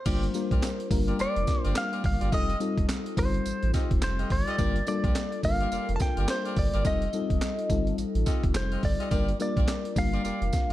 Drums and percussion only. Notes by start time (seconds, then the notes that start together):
0.06 kick, closed hi-hat, crash, tambourine
0.23 closed hi-hat
0.34 closed hi-hat, tambourine
0.51 kick, closed hi-hat
0.63 snare, clap, closed hi-hat, tambourine
0.80 closed hi-hat
0.91 kick, open hi-hat, tambourine
1.08 closed hi-hat
1.19 closed hi-hat, tambourine
1.36 closed hi-hat
1.47 kick, snare, closed hi-hat, tambourine
1.65 closed hi-hat
1.75 snare, clap, closed hi-hat, tambourine
1.93 closed hi-hat
2.04 kick, open hi-hat
2.21 closed hi-hat
2.32 kick, closed hi-hat, tambourine
2.50 closed hi-hat
2.60 closed hi-hat, tambourine
2.78 kick, closed hi-hat
2.89 snare, clap, closed hi-hat, tambourine
3.06 closed hi-hat
3.17 kick, open hi-hat, tambourine
3.34 closed hi-hat
3.46 closed hi-hat, tambourine
3.63 closed hi-hat
3.74 kick, snare, closed hi-hat, tambourine
3.91 kick, closed hi-hat
4.02 snare, clap, closed hi-hat, tambourine
4.19 closed hi-hat
4.30 kick, open hi-hat
4.48 closed hi-hat
4.59 kick, closed hi-hat, tambourine
4.76 closed hi-hat
4.87 closed hi-hat, tambourine
5.04 kick, closed hi-hat
5.15 snare, clap, closed hi-hat, tambourine
5.32 closed hi-hat
5.43 kick, open hi-hat, tambourine
5.61 closed hi-hat
5.72 closed hi-hat, tambourine
5.89 closed hi-hat
6.00 kick, snare, closed hi-hat, tambourine
6.17 closed hi-hat
6.28 snare, clap, closed hi-hat, tambourine
6.45 closed hi-hat
6.56 kick, open hi-hat
6.74 closed hi-hat
6.85 kick, closed hi-hat, tambourine
7.02 closed hi-hat
7.13 closed hi-hat, tambourine
7.30 kick, closed hi-hat
7.41 snare, clap, closed hi-hat, tambourine
7.59 closed hi-hat
7.70 kick, closed hi-hat, tambourine
7.87 closed hi-hat
7.98 closed hi-hat, tambourine
8.15 closed hi-hat
8.26 kick, snare, closed hi-hat, tambourine
8.43 kick, closed hi-hat
8.54 snare, clap, closed hi-hat, tambourine
8.72 closed hi-hat
8.83 kick, open hi-hat
9.00 closed hi-hat
9.11 kick, closed hi-hat, tambourine
9.29 closed hi-hat
9.40 closed hi-hat, tambourine
9.57 kick, closed hi-hat
9.68 snare, clap, closed hi-hat, tambourine
9.85 closed hi-hat
9.96 kick, open hi-hat, tambourine
10.14 closed hi-hat
10.25 closed hi-hat, tambourine
10.42 closed hi-hat
10.53 kick, snare, closed hi-hat, tambourine